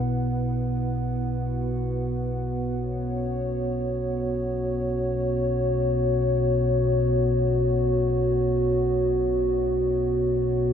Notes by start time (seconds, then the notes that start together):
Already playing: B3 E4 B4 F#5
0.06 B1 B2
1.27 F#4
2.80 C#5